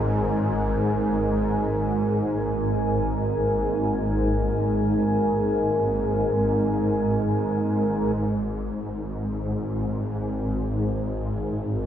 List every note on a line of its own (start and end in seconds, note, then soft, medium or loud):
0.00 8.14 G#1 medium
0.00 8.15 G#2 medium
0.00 11.86 G#3 medium
0.00 11.86 D#4 medium
0.00 11.86 A#4 medium
0.00 8.18 C#5 medium
0.00 11.86 G#5 medium
8.16 11.86 G#1 medium
8.16 11.86 G#2 medium